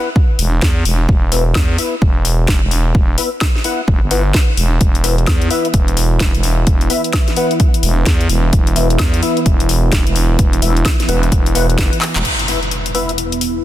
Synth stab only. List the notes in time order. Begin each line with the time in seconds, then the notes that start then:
1.32 B3 E4 B4 E5
1.78 B3 E4 B4 E5
3.18 B3 E4 B4 E5
3.64 B3 E4 B4 F#5
4.11 B3 E4 B4 F#5
5.04 B3 E4 B4 E5
5.50 B3 E4 B4 E5
6.90 B3 E4 B4 E5
7.37 B3 E4 B4 F#5
8.76 B3 E4 B4 E5
9.22 B3 E4 B4 E5
10.62 B3 E4 B4 E5
11.09 B3 E4 B4 F#5
11.55 B3 E4 B4 F#5
12.48 B3 E4 B4 E5
12.95 B3 E4 B4 E5